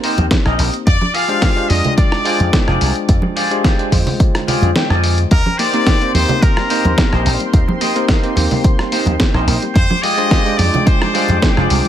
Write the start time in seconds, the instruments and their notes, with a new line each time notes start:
Already playing: tine electric piano A#3 C4 D#4 G4 C5
0.03 clean electric guitar D#4 G4 A#4 C5, open hi-hat
0.18 slap bass D#2, closed hi-hat, high conga
0.31 kick, snare, closed hi-hat
0.45 slap bass A#1, clean electric guitar D#4 G4 A#4 D#5, cross-stick
0.59 slap bass A#1, open hi-hat
0.74 closed hi-hat
0.87 slap bass F2, trumpet section D5, kick, closed hi-hat
1.01 muted clean electric guitar stroke, high conga
1.14 clean electric guitar F4 G4 G#4 D5, trumpet section F5, open hi-hat
1.28 tine electric piano G#3 D4 F4 G4 C5, closed hi-hat
1.42 kick, snare, closed hi-hat
1.56 tine electric piano G#3 D4 F4 G4 C5, closed hi-hat
1.69 slap bass F2, tine electric piano G#3 D4 F4 D5 G5, trumpet section D#5, open hi-hat, high conga
1.85 closed hi-hat, low conga
1.98 trumpet section D5, kick, closed hi-hat
2.12 cross-stick
2.25 tine electric piano G#3 D4 F4 C5 G5, clean electric guitar F4 G4 G#4 D5, open hi-hat
2.40 slap bass F2, closed hi-hat, high conga
2.53 kick, snare, closed hi-hat
2.68 slap bass F1, clean electric guitar F4 G4 G#4 D5, cross-stick
2.81 slap bass C2, open hi-hat
2.96 closed hi-hat
3.09 slap bass F2, kick, closed hi-hat
3.22 muted clean electric guitar stroke, high conga
3.36 clean electric guitar F4 G4 G#4 D5, open hi-hat
3.50 tine electric piano G#3 D4 F4 G4 C5, closed hi-hat
3.64 kick, snare, closed hi-hat
3.78 tine electric piano G#3 D4 F4 G4 C5, closed hi-hat
3.91 slap bass F2, tine electric piano D3 G#3 F4 C5 G5, kick, open hi-hat, high conga
4.07 open hi-hat, low conga
4.20 kick, closed hi-hat
4.35 cross-stick, closed hi-hat
4.47 clean electric guitar F4 G4 G#4 D5, open hi-hat, low conga
4.62 slap bass F2, closed hi-hat, high conga
4.76 clean electric guitar G5, snare, closed hi-hat
4.90 slap bass F2, clean electric guitar F4 G4 G#4 D5 D#5, cross-stick
5.04 open hi-hat
5.18 closed hi-hat
5.31 slap bass D#2, synth arpeggio sound D#3, trumpet section A#4, analog synth pad C5 G5 C6, kick, closed hi-hat
5.46 synth arpeggio sound G3, muted clean electric guitar stroke, high conga
5.58 synth arpeggio sound A#3, clean electric guitar D#4 G4 A#4 C5, trumpet section D5, open hi-hat
5.73 tine electric piano A#3 C4 D#4 G4 C5, synth arpeggio sound A#3, closed hi-hat
5.87 synth arpeggio sound D#4, kick, snare, closed hi-hat
6.01 tine electric piano A#3 C4 D#4 G4 C5, synth arpeggio sound C4, closed hi-hat
6.14 slap bass D#2, tine electric piano A#3 C4 D#4 G4 D#5, synth arpeggio sound A#3, trumpet section C5, open hi-hat, high conga
6.29 synth arpeggio sound G3, closed hi-hat, low conga
6.41 synth arpeggio sound D#3, trumpet section A#4, kick, closed hi-hat
6.57 synth arpeggio sound G3, cross-stick
6.70 tine electric piano A#3 C4 D#4 G4 C5, synth arpeggio sound A#3, clean electric guitar D#4 G4 A#4 C5, open hi-hat
6.85 slap bass D#2, synth arpeggio sound A#3, closed hi-hat, high conga
6.98 synth arpeggio sound D#4, kick, snare, closed hi-hat
7.12 slap bass A#1, synth arpeggio sound C4, clean electric guitar D#4 G4 A#4 C5, cross-stick
7.26 slap bass A#1, synth arpeggio sound A#3, open hi-hat
7.40 synth arpeggio sound G3, closed hi-hat
7.53 slap bass D#2, synth arpeggio sound D#3, kick, closed hi-hat
7.68 synth arpeggio sound G3, muted clean electric guitar stroke, high conga
7.81 synth arpeggio sound A#3, clean electric guitar D#4 G4 A#4 D#5, open hi-hat
7.96 tine electric piano A#3 C4 D#4 G4 C5, synth arpeggio sound A#3, closed hi-hat
8.08 kick, snare, closed hi-hat
8.22 tine electric piano A#3 C4 D#4 G4 C5, synth arpeggio sound C4, closed hi-hat
8.35 slap bass D#2, tine electric piano A#3 C4 D#4 G4 C5, synth arpeggio sound A#3, open hi-hat, high conga
8.51 synth arpeggio sound G3, open hi-hat, low conga
8.64 synth arpeggio sound D#3, kick, closed hi-hat
8.79 synth arpeggio sound G3, cross-stick
8.92 synth arpeggio sound A#3, clean electric guitar D#4 G4 A#4 C5, open hi-hat
9.06 slap bass D#2, synth arpeggio sound A#3, closed hi-hat, high conga
9.20 synth arpeggio sound D#4, kick, snare, closed hi-hat
9.34 slap bass A#1, synth arpeggio sound C4, clean electric guitar D#4 G4 A#4 C5, cross-stick
9.47 slap bass A#1, synth arpeggio sound A#3, open hi-hat
9.62 synth arpeggio sound G3, closed hi-hat
9.75 slap bass F2, synth arpeggio sound D3, analog synth pad G#3 D6, trumpet section C5, kick, closed hi-hat
9.90 synth arpeggio sound F3, muted clean electric guitar stroke, high conga
10.03 synth arpeggio sound G3, clean electric guitar F4 G4 G#4 D5, trumpet section D#5, open hi-hat
10.17 synth arpeggio sound G3, tine electric piano G#3 D4 F4 G4 C5, closed hi-hat
10.31 synth arpeggio sound C4, kick, snare, closed hi-hat
10.45 tine electric piano G#3 D4 F4 G4 C5, synth arpeggio sound G#3, closed hi-hat
10.58 slap bass F2, synth arpeggio sound G3, tine electric piano G#3 D4 F4 D5 G5, trumpet section D5, open hi-hat, high conga
10.74 synth arpeggio sound F3, closed hi-hat, low conga
10.86 synth arpeggio sound D3, trumpet section C5, kick, closed hi-hat
11.02 synth arpeggio sound F3, cross-stick
11.13 synth arpeggio sound G3, tine electric piano G#3 D4 F4 C5 G5, clean electric guitar F4 G4 G#4 D5, open hi-hat
11.28 slap bass F2, synth arpeggio sound G3, closed hi-hat, high conga
11.42 synth arpeggio sound C4, kick, snare, closed hi-hat
11.57 slap bass F1, synth arpeggio sound G#3, clean electric guitar F4 G4 G#4 D5, cross-stick
11.70 slap bass C2, synth arpeggio sound G3, open hi-hat
11.85 synth arpeggio sound F3, closed hi-hat